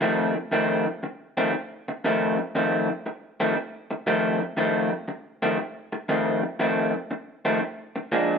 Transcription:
0.01 clean electric guitar F2 D#3 A3 C4
0.36 muted clean electric guitar stroke
0.52 clean electric guitar F2 D#3 A3 C4
0.87 muted clean electric guitar stroke
1.03 muted clean electric guitar stroke
1.37 clean electric guitar F2 D#3 A3 C4
1.54 muted clean electric guitar stroke
1.88 muted clean electric guitar stroke
2.04 clean electric guitar F2 D#3 A3 C4
2.39 muted clean electric guitar stroke
2.55 clean electric guitar F2 D#3 A3 C4
2.90 muted clean electric guitar stroke
3.06 muted clean electric guitar stroke
3.40 clean electric guitar F2 D#3 A3 C4
3.57 muted clean electric guitar stroke
3.91 muted clean electric guitar stroke
4.07 clean electric guitar F2 D#3 A3 C4
4.41 muted clean electric guitar stroke
4.57 clean electric guitar F2 D#3 A3 C4
4.91 muted clean electric guitar stroke
5.08 muted clean electric guitar stroke
5.42 clean electric guitar F2 D#3 A3 C4
5.59 muted clean electric guitar stroke
5.92 muted clean electric guitar stroke
6.09 clean electric guitar F2 D#3 A3 C4
6.43 muted clean electric guitar stroke
6.59 clean electric guitar F2 D#3 A3 C4
6.94 muted clean electric guitar stroke
7.11 muted clean electric guitar stroke
7.45 clean electric guitar F2 D#3 A3 C4
7.61 muted clean electric guitar stroke
7.96 muted clean electric guitar stroke
8.12 clean electric guitar A#2 F3 G#3 D4

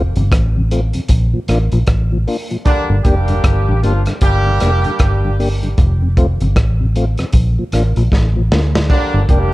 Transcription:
Already playing: fingered electric bass F1
0.16 fingered electric bass G1, tonewheel organ F2 C3, closed hi-hat
0.32 fingered electric bass A1, kick, cross-stick, closed hi-hat
0.56 tonewheel organ F2 C3
0.71 tonewheel organ A3 C4 F4, closed hi-hat
0.93 tonewheel organ F2 C3, closed hi-hat
1.08 fingered electric bass A#1, kick, closed hi-hat
1.33 tonewheel organ A#2 F3
1.48 fingered electric bass A1, tonewheel organ A#3 D4 F4, cross-stick, closed hi-hat
1.72 fingered electric bass A#1, tonewheel organ A#2 F3, closed hi-hat
1.87 fingered electric bass A1, kick, cross-stick, closed hi-hat
2.12 tonewheel organ A#2 F3
2.27 tonewheel organ A#3 D4 F4, open hi-hat
2.51 tonewheel organ A#2 F3, closed hi-hat
2.65 horn section D3 G3 A#3 D4, kick, closed hi-hat
2.89 fingered electric bass G1, tonewheel organ G2 D3
3.04 fingered electric bass F1, horn section G3 A#3 D4 G4, tonewheel organ A#3 D4 G4, kick, closed hi-hat
3.28 tonewheel organ G2 D3, closed hi-hat
3.44 fingered electric bass G1, kick, cross-stick, closed hi-hat
3.68 fingered electric bass A1, tonewheel organ G2 D3
3.83 fingered electric bass G1, horn section F3 A#3 D4 F4, tonewheel organ A#3 D4 G4, closed hi-hat
4.06 tonewheel organ G2 D3, cross-stick, closed hi-hat
4.21 fingered electric bass G1, horn section G3 A#3 D4 G4, kick, closed hi-hat
4.46 tonewheel organ G2 D3
4.60 fingered electric bass F1, tonewheel organ A#3 D4 G4, cross-stick, closed hi-hat
4.84 tonewheel organ G2 D3, closed hi-hat
4.99 fingered electric bass G1, kick, cross-stick, closed hi-hat
5.24 tonewheel organ G2 D3
5.39 tonewheel organ A#3 D4 G4, open hi-hat
5.63 tonewheel organ G2 D3, closed hi-hat
5.78 fingered electric bass F1, kick, closed hi-hat
6.02 tonewheel organ F2 C3
6.17 tonewheel organ A3 C4 F4, kick, closed hi-hat
6.40 fingered electric bass G1, tonewheel organ F2 C3, closed hi-hat
6.56 fingered electric bass A1, kick, cross-stick, closed hi-hat
6.81 tonewheel organ F2 C3
6.96 tonewheel organ A3 C4 F4, closed hi-hat
7.18 tonewheel organ F2 C3, cross-stick, closed hi-hat
7.33 fingered electric bass A#1, kick, closed hi-hat
7.59 tonewheel organ A#2 F3
7.72 fingered electric bass A1, tonewheel organ A#3 D4 F4, cross-stick, closed hi-hat
7.96 fingered electric bass A#1, tonewheel organ A#2 F3, closed hi-hat
8.12 fingered electric bass A1, kick, snare
8.36 tonewheel organ A#2 F3
8.52 fingered electric bass D2, tonewheel organ A#3 D4 F4, snare
8.75 tonewheel organ A#2 F3, snare
8.90 horn section D3 G3 A#3 D4, kick, crash
9.14 fingered electric bass G1, tonewheel organ G2 D3
9.29 fingered electric bass F1, horn section G3 A#3 D4 G4, tonewheel organ A#3 D4 G4, kick, closed hi-hat

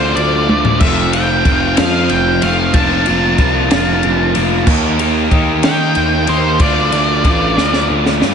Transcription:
Already playing: picked electric bass D2, overdriven electric guitar D3 A3 D4 F4, lead electric guitar C5
0.15 picked electric bass D2, lead electric guitar D5, ride
0.49 picked electric bass D2, overdriven electric guitar D3 A3 D4 F4, high tom
0.65 floor tom
0.80 picked electric bass F1, overdriven electric guitar F3 A3 C4 F4, lead electric guitar E5, kick, crash
1.13 overdriven electric guitar F3 A3 C4 F4, lead electric guitar G5, ride
1.45 picked electric bass F1, overdriven electric guitar F3 A3 C4 F4, kick, ride
1.77 picked electric bass F2, overdriven electric guitar F3 A3 C4 F4, lead electric guitar F5, snare, ride
2.09 picked electric bass F1, lead electric guitar G5, ride
2.42 picked electric bass F1, overdriven electric guitar F3 A3 C4 F4, lead electric guitar F5, ride
2.74 picked electric bass F1, overdriven electric guitar F3 A#3 D4 F4, lead electric guitar A5, kick, ride
3.06 picked electric bass F1, overdriven electric guitar F3 A#3 D4 F4, ride
3.38 picked electric bass C2, overdriven electric guitar F3 A#3 D4 F4, kick, ride
3.71 picked electric bass F1, overdriven electric guitar F3 A#3 D4 F4, snare, ride
4.03 picked electric bass F1, ride
4.35 picked electric bass F1, overdriven electric guitar F3 A#3 D4 F4, ride
4.67 picked electric bass D#2, overdriven electric guitar D#3 A#3 D#4 G4, kick, crash
4.99 overdriven electric guitar D#3 A#3 D#4 G4, ride
5.31 picked electric bass D#2, overdriven electric guitar D#3 A#3 D#4 G4, kick, ride
5.63 overdriven electric guitar D#3 A#3 D#4 G4, picked electric bass D#3, lead electric guitar G5, snare, ride
5.95 picked electric bass D#2, ride
6.27 picked electric bass D#2, overdriven electric guitar D#3 A#3 D#4 G4, lead electric guitar C5, ride
6.60 picked electric bass D2, overdriven electric guitar D3 A3 D4 F4, lead electric guitar D5, kick, ride
6.92 picked electric bass D2, overdriven electric guitar D3 A3 D4 F4, ride
7.24 picked electric bass A1, overdriven electric guitar D3 A3 D4 F4, kick, ride
7.57 picked electric bass D2, overdriven electric guitar D3 A3 D4 F4, snare
7.73 snare
7.90 picked electric bass D2
8.06 snare
8.20 picked electric bass G2, overdriven electric guitar D3 A3 D4 F4, snare

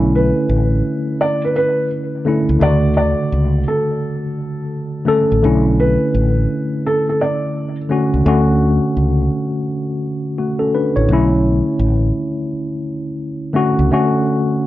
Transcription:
Already playing: fretless electric bass B1, tine electric piano D3 A3 C#4 E4
0.15 felt piano B4
0.49 fretless electric bass A1
1.21 felt piano D5
1.45 felt piano B4
1.56 felt piano B4
2.25 tine electric piano D3 A3 C#4 E4
2.49 fretless electric bass C#2
2.59 fretless electric bass D2, tine electric piano C#3 D3 A3 F#4, felt piano D5
2.97 felt piano D5
3.32 fretless electric bass C#2
3.68 felt piano A4
5.05 tine electric piano D3 A3 C#4 A4
5.32 fretless electric bass A1
5.43 fretless electric bass B1, tine electric piano D3 A3 C#4 E4
5.80 felt piano B4
6.14 fretless electric bass A1
6.87 felt piano A4
7.09 felt piano A4
7.21 felt piano D5
7.89 tine electric piano D3 A3 C#4 F#4
8.14 fretless electric bass C#2
8.25 fretless electric bass D2, tine electric piano D3 A3 C#4 F#4
8.97 fretless electric bass C#2
10.38 tine electric piano A3 F#4
10.59 tine electric piano C#4 A4
10.74 tine electric piano D4 B4
10.96 fretless electric bass A1, tine electric piano E4 C#5
11.09 fretless electric bass B1, tine electric piano D3 A3 C#4
11.13 tine electric piano E4
11.79 fretless electric bass A1
13.53 tine electric piano D3 A3 C#4 F#4
13.79 fretless electric bass C#2
13.91 tine electric piano D3 A3 C#4 F#4

